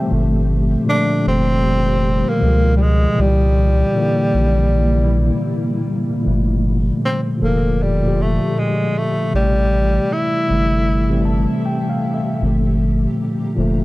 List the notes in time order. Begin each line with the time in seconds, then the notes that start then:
Already playing: E3 G3 C4 E5 G5 A5
0.00 A3
0.08 A#2 D3 F3 G3 F4 G4 A4
0.12 G1 A3
0.85 A#2 D3 F3
0.89 A3 D4
1.27 F1 C4
2.29 A#3
2.38 B2 D#3 F3
2.42 C#2 G#3
2.77 G3
2.82 G#3
3.14 A#2 D3 E3
3.19 C2 C3 G3 A#3 E4
3.94 A#2 D3 E3
3.99 A#3
4.34 A#1
6.23 G1 A#2 D3 F3 F4 G4 D5
6.27 A#2 A3
7.05 C4
7.38 F1 A#2 D3 F3
7.43 A#3 A4
7.82 G3
8.03 A#2 D3 F3
8.08 G4
8.22 A3
8.59 G#3
8.98 A3
9.31 A1 C3 E3 G3 C4 G4 A4 E5
9.36 G3 A3
10.13 E4
10.48 G1 C3 E3 G3
10.53 A3
11.09 C3 E3 G3
11.14 A3
11.25 A5
11.65 G5
11.89 F5
12.14 E5
12.40 G1 A#2 D3 F3 D4 F5 A#5
12.45 A3
13.55 F1 A#2 D3 F3
13.60 A3